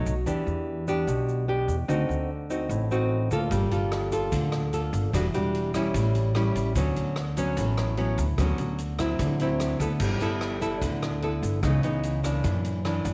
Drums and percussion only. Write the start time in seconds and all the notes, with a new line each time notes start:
0.06 shaker
0.27 shaker
0.47 shaker
0.88 shaker
1.08 shaker
1.28 shaker
1.69 shaker
1.89 shaker
2.10 shaker
2.50 shaker
2.70 shaker
2.91 shaker
3.31 shaker
3.51 kick, closed hi-hat, shaker
3.71 closed hi-hat, shaker
3.92 cross-stick, closed hi-hat
4.12 kick, closed hi-hat, shaker
4.32 kick, closed hi-hat, shaker
4.52 cross-stick, closed hi-hat, shaker
4.73 closed hi-hat, shaker
4.93 kick, closed hi-hat, shaker
5.13 kick, cross-stick, closed hi-hat, shaker
5.34 closed hi-hat, shaker
5.55 closed hi-hat
5.74 kick, cross-stick, closed hi-hat, shaker
5.94 kick, closed hi-hat, shaker
6.15 closed hi-hat, shaker
6.35 cross-stick, closed hi-hat
6.55 kick, closed hi-hat, shaker
6.75 kick, closed hi-hat, shaker
6.96 closed hi-hat, shaker
7.16 cross-stick, closed hi-hat
7.37 kick, closed hi-hat, shaker
7.57 kick, closed hi-hat, shaker
7.77 cross-stick, closed hi-hat, shaker
7.97 closed hi-hat
8.18 kick, closed hi-hat, shaker
8.38 kick, cross-stick, closed hi-hat, shaker
8.58 closed hi-hat, shaker
8.78 closed hi-hat, shaker
8.99 kick, cross-stick, closed hi-hat, shaker
9.19 kick, closed hi-hat, shaker
9.40 closed hi-hat, shaker
9.60 cross-stick, closed hi-hat, shaker
9.80 kick, closed hi-hat, shaker
10.00 kick, crash, shaker
10.20 closed hi-hat, shaker
10.41 cross-stick, closed hi-hat
10.61 kick, closed hi-hat, shaker
10.82 kick, closed hi-hat, shaker
11.02 cross-stick, closed hi-hat, shaker
11.22 closed hi-hat
11.43 kick, closed hi-hat, shaker
11.63 kick, cross-stick, closed hi-hat, shaker
11.83 closed hi-hat, shaker
12.03 closed hi-hat, shaker
12.24 kick, cross-stick, closed hi-hat, shaker
12.44 kick, closed hi-hat, shaker
12.64 closed hi-hat, shaker
12.85 cross-stick, closed hi-hat
13.05 kick, closed hi-hat, shaker